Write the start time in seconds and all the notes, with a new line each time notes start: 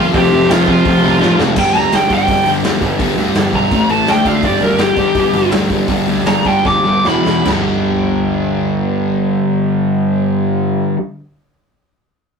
Already playing: A#2 F3 A#3
0.13 F1 F2 C3 F3 A3 G4 G5, kick, open hi-hat
0.18 C4
0.32 F2 C3 F3
0.49 F1 F2 C3 F3 F4 F5, snare, open hi-hat
0.68 F1 F2 C3 F3 F4 F5, kick
0.85 F1 F2 C3 F3, kick, open hi-hat
1.03 C2 F2 C3 F3
1.20 A1 F2 C3 F3, snare
1.38 F1 F2 C3 F3, snare
1.56 G1 G2 D3 G3 G5, kick, crash
1.75 D2 G2 D3 G3 A#5, open hi-hat
1.92 G1 G2 D3 G3 G5, snare, open hi-hat
2.10 G2 D3 G3, kick, open hi-hat
2.14 G5
2.28 G1 G2 D3 G3, kick, open hi-hat
2.45 G1 G2 D3 G3, open hi-hat
2.63 D2 G2 D3 G3, snare, open hi-hat
2.81 G1 G2 D3 G3, kick, open hi-hat
2.99 G1 G2 D3 G3, kick, open hi-hat
3.16 D2 G2 D3 G3, open hi-hat
3.34 G1 G2 D3 G3, snare, open hi-hat
3.53 B1 G2 D3 G3 A#5, kick, open hi-hat
3.71 A1 A2 E3 A3, kick, open hi-hat
3.88 A1 A2 E3 A3 A5, open hi-hat
4.06 D2 D3 A3 D4 G5, snare, open hi-hat
4.25 D2 D3 A3 D4 F5, kick, open hi-hat
4.43 G1 G2 D3 G3 D5, kick, open hi-hat
4.60 D2 G2 D3 G3 A#4, open hi-hat
4.79 G1 G2 D3 G3 G4, snare, open hi-hat
4.96 G2 D3 G3, kick, open hi-hat
5.15 G1 G2 D3 G3, kick, open hi-hat
5.33 G1 G2 D3 G3, open hi-hat
5.52 D2 G2 D3 G3, snare, open hi-hat
5.69 G1 G2 D3 G3, kick, open hi-hat
5.88 G1 G2 D3 G3, kick, open hi-hat
6.07 D2 G2 D3 G3, open hi-hat
6.26 G1 G2 D3 G3 A#5, snare, open hi-hat
6.45 G2 D3 G3 G5, kick, open hi-hat
6.65 G1 G2 D3 G3 D6, kick, snare
6.84 G1 G2 D3 G3
7.05 E1 E2 B2 E3 B5, snare
7.25 E1 E2 B2 E3, snare
7.45 G1 G2 D3, snare, floor tom, crash
7.49 G3